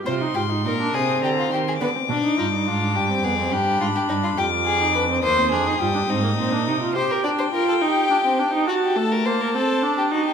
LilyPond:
<<
  \new Staff \with { instrumentName = "Violin" } { \time 12/8 \key c \minor \tempo 4. = 70 c'''4. ees'''8 bes''8 c'''8 d'''2. | b''4. d'''4. ees'''2. | g''2. a''2. | }
  \new Staff \with { instrumentName = "Violin" } { \time 12/8 \key c \minor c''8 g'8 bes'8 aes'8 g'16 f'16 g'16 aes'16 b'8 d'8 ees'8 f'8 g'8 gis'8 | g'8 f'16 g'16 ees'16 f'16 g'8 gis'8 b'8 c''8 aes'8 g'8 ees'4. | c''16 bes'16 d''16 c''16 bes'16 a'16 g'4. fis'16 g'16 a'16 bes'16 c''16 bes'16 a'8. g'16 fis'16 g'16 | }
  \new Staff \with { instrumentName = "Viola" } { \time 12/8 \key c \minor f'16 ees'16 f'16 ees'16 ees'16 d'16 c'4. b16 c'16 d'16 ees'16 f'16 ees'16 d'8. c'16 b16 c'16 | d'4. f'8. ees'16 d'16 c'16 bes16 c'16 d'16 ees'16 f'16 d'16 c'16 bes16 c'16 d'16 ees'16 f'16 | g'8 d'8 f'8 ees'8 d'16 c'16 d'16 ees'16 fis'8 a8 bes8 c'8 d'8 dis'8 | }
  \new Staff \with { instrumentName = "Cello" } { \clef bass \time 12/8 \key c \minor c8 aes,8 bes,8 c8 d8 ees8 d8 b,8 g,8 gis,8 g,8 f,8 | g,8 gis,8 g,8 f,4. ees,8 f,8 g,8 aes,8 bes,8 c8 | r1. | }
>>